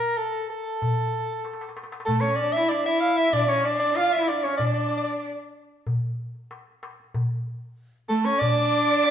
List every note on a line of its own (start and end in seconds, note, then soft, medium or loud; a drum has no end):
0.00 0.19 A#4 medium
0.18 0.49 A4 medium
0.18 darbuka ka soft
0.35 darbuka ka soft
0.50 1.72 A4 medium
0.82 darbuka dum medium
1.45 darbuka tek medium
1.53 darbuka ka medium
1.61 darbuka tek medium
1.69 darbuka ka medium
1.77 darbuka tek medium
1.83 darbuka ka medium
1.92 darbuka tek medium
2.00 darbuka ka medium
2.06 2.24 A3 medium
2.06 2.22 A4 medium
2.06 darbuka dum medium
2.21 2.41 C#4 medium
2.21 2.37 C#5 medium
2.36 2.54 D5 medium
2.40 2.58 D4 medium
2.53 2.72 E4 medium
2.53 2.70 E5 medium
2.69 2.87 D4 medium
2.69 2.85 D5 medium
2.86 3.32 E4 medium
2.86 3.02 E5 medium
3.01 3.19 F5 medium
3.17 3.35 E5 medium
3.33 3.48 D4 medium
3.33 3.50 D5 medium
3.33 darbuka dum medium
3.49 3.66 C#4 medium
3.49 3.67 C#5 medium
3.64 3.97 D4 medium
3.64 3.79 D5 medium
3.80 3.98 D5 medium
3.96 4.16 F4 medium
3.96 4.14 F5 medium
3.96 darbuka tek medium
4.13 4.31 E4 medium
4.13 4.30 E5 medium
4.28 4.46 D4 medium
4.28 4.45 D5 medium
4.28 darbuka tek medium
4.43 4.62 C#4 medium
4.43 4.57 C#5 medium
4.43 darbuka ka soft
4.58 5.24 D4 medium
4.58 4.66 D5 medium
4.58 darbuka dum medium
4.66 4.73 D5 medium
4.74 4.80 D5 medium
4.80 4.88 D5 medium
4.88 4.96 D5 medium
4.97 5.03 D5 medium
5.04 5.11 D5 medium
5.87 darbuka dum medium
6.04 darbuka ka soft
6.35 darbuka ka soft
6.51 darbuka tek medium
6.83 darbuka tek medium
7.00 darbuka ka soft
7.14 darbuka dum medium
7.46 darbuka ka soft
8.09 8.26 A3 medium
8.09 8.27 A4 medium
8.25 8.43 C#4 medium
8.25 8.40 C#5 medium
8.39 9.11 D4 loud
8.39 9.11 D5 loud
8.39 darbuka dum medium
9.03 darbuka tek medium